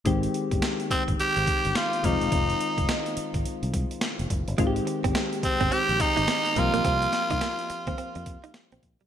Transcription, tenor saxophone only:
X:1
M:4/4
L:1/8
Q:"Swing 16ths" 1/4=106
K:Ab
V:1 name="Tenor saxophone"
z3 C G2 F E- | E3 z4 z | z3 C G E2 F- | F6 z2 |]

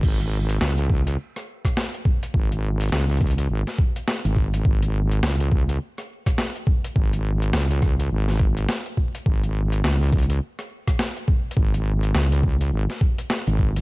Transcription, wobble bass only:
X:1
M:4/4
L:1/16
Q:"Swing 16ths" 1/4=104
K:F#
V:1 name="Wobble bass" clef=bass
G,,,4 C,,4 z8 | G,,,4 C,,4 G,,, z4 G,,,3 | G,,,4 C,,4 z8 | G,,,4 C,,4 G,,,4 z4 |
G,,,4 C,,4 z8 | G,,,4 C,,4 G,,, z4 G,,,3 |]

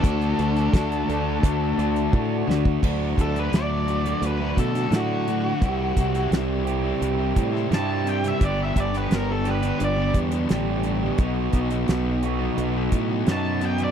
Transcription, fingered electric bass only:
X:1
M:4/4
L:1/8
Q:1/4=86
K:Dlyd
V:1 name="Fingered electric bass" clef=bass
D,, D,, D,, D,, D,, D,, A,, D,, | D,, D,, D,,2 D,, B,, A,,2 | =C,, C,, C,,2 C,, A,, =G,,2 | =G,,, G,,, G,,,2 G,,, E,, A,,,2 |
B,,, B,,, B,,,2 B,,, A,, F,,2 |]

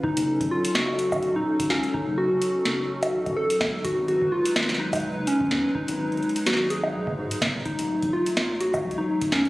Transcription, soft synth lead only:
X:1
M:4/4
L:1/16
Q:"Swing 16ths" 1/4=126
K:F#m
V:1 name="Soft synth lead"
^D4 ^E2 F4- F D3 C2 | ^D2 F8- F2 A4 | F2 F2 ^E4 ^D4 C4 | ^D6 F2 G6 z2 |
^D4 ^E4 F3 D3 C2 |]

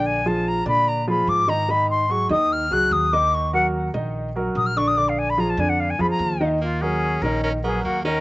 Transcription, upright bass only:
X:1
M:4/4
L:1/8
Q:1/4=146
K:Ebm
V:1 name="Upright bass" clef=bass
B,,,3 B,,3 A,,2- | A,,3 E,,2 D,, E,,2- | E,,3 B,,,3 B,,,2- | B,,,3 F,,2 F,, E,,2- |
E,,3 B,,,3 E,,2 |]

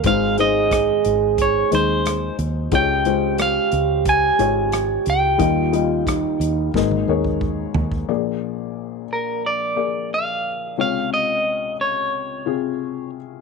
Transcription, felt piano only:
X:1
M:4/4
L:1/8
Q:1/4=90
K:Ab
V:1 name="Felt piano"
[A,Ec] [A,Ec]3 z [A,Ec]2 z | [A,Fd] [A,Fc]3 z [A,Fd]2 z | [G,Fe] [G,Fe]3 [B,Ae] [B,Ad]2 z | [B,A=d]3 z2 [B,Ad]2 z |
[C,Fd]3 z2 [C,FA]2 z |]
V:2 name="Felt piano" clef=bass
[A,,,A,,]8 | [D,,D,]8 | [E,,E,]4 [A,,,A,,]4 | [B,,,B,,]8 |
[D,,D,]8 |]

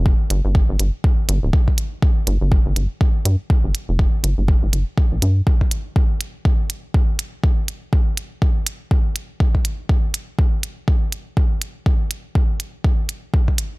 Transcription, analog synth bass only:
X:1
M:4/4
L:1/16
Q:"Swing 16ths" 1/4=122
K:Gm
V:1 name="Analog synth bass" clef=bass
z2 G,,, G,,, z G,,, G,,, z3 G,,, D,,, z4 | z2 G,,, G,,, z G,,, G,,, z3 G,, z2 G,,, z F,,, | z2 G,,, G,,, z G,,, G,,, z2 B,,, G,, z4 z | z16 |
z16 | z16 | z16 |]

